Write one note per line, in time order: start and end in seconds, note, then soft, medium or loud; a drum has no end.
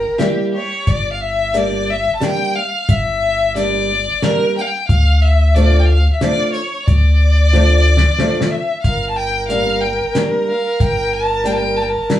0.00 0.20 A#4 loud
0.00 0.20 G5 loud
0.18 0.53 G3 medium
0.18 0.53 A#3 medium
0.18 0.53 E4 medium
0.18 0.51 G4 medium
0.18 snare medium
0.18 closed hi-hat soft
0.52 0.84 G4 medium
0.52 0.90 C#5 medium
0.87 2.08 G1 loud
0.87 1.12 D5 loud
0.87 kick medium
0.87 closed hi-hat soft
1.13 1.23 F5 medium
1.21 1.59 E5 loud
1.53 1.88 G3 medium
1.53 1.88 A#3 medium
1.53 1.88 D4 medium
1.53 1.92 D5 loud
1.53 closed hi-hat medium
1.90 2.14 E5 loud
2.15 2.24 A5 medium
2.20 2.55 G3 medium
2.20 2.55 A#3 medium
2.20 2.55 D4 medium
2.20 2.57 G5 loud
2.20 snare medium
2.20 closed hi-hat medium
2.56 2.91 F5 loud
2.89 4.09 G1 loud
2.89 3.56 E5 loud
2.89 kick medium
2.89 closed hi-hat medium
3.55 3.89 G3 medium
3.55 3.89 A#3 medium
3.55 3.89 D4 medium
3.55 4.25 D5 loud
3.55 closed hi-hat medium
4.22 4.56 G3 medium
4.22 4.56 A#3 medium
4.22 4.56 D4 medium
4.22 4.56 A#4 loud
4.22 snare medium
4.22 closed hi-hat medium
4.57 4.63 G5 loud
4.61 4.68 F5 medium
4.67 4.87 G5 medium
4.88 6.08 D2 loud
4.88 5.23 F5 loud
4.88 kick medium
4.88 closed hi-hat soft
5.21 5.56 E5 medium
5.55 5.89 F3 medium
5.55 5.89 A3 medium
5.55 5.89 D4 medium
5.55 5.81 D5 loud
5.55 closed hi-hat soft
5.80 5.87 G5 medium
5.85 6.12 F5 medium
6.13 6.23 E5 medium
6.21 6.54 F3 medium
6.21 6.55 A3 medium
6.21 6.55 D4 medium
6.21 6.52 D5 loud
6.21 snare medium
6.21 closed hi-hat soft
6.52 6.87 C#5 medium
6.86 8.06 D2 loud
6.86 8.52 D5 loud
6.86 kick medium
6.86 closed hi-hat soft
7.53 7.86 F3 medium
7.53 7.86 A3 medium
7.53 7.86 D4 medium
7.53 snare medium
7.97 snare medium
8.19 8.51 F3 medium
8.19 8.52 A3 medium
8.19 8.52 D4 medium
8.19 snare medium
8.41 snare medium
8.51 8.81 E5 medium
8.82 10.02 G1 loud
8.82 12.20 A#4 loud
8.82 9.08 F5 medium
8.82 kick medium
8.82 closed hi-hat medium
9.10 9.18 A5 medium
9.16 9.48 G5 loud
9.48 9.82 G3 medium
9.48 9.82 A#3 medium
9.48 9.83 D4 medium
9.48 9.82 F5 loud
9.48 closed hi-hat medium
9.81 10.14 G5 medium
10.15 10.47 G3 medium
10.15 10.48 A#3 medium
10.15 10.48 D4 medium
10.15 snare medium
10.15 closed hi-hat medium
10.49 10.82 F5 medium
10.80 11.97 G1 loud
10.80 11.15 G5 loud
10.80 kick medium
10.80 closed hi-hat soft
11.13 11.47 A5 loud
11.44 11.77 G3 medium
11.44 11.77 A#3 medium
11.44 11.77 D4 medium
11.44 11.53 G5 loud
11.44 closed hi-hat medium
11.52 11.58 A5 medium
11.56 11.78 G5 loud
11.76 11.83 A5 loud
11.82 11.90 G5 medium
11.89 12.09 A5 medium
12.10 12.20 G3 medium
12.10 12.20 A#3 medium
12.10 12.20 D4 medium
12.10 snare medium
12.10 closed hi-hat medium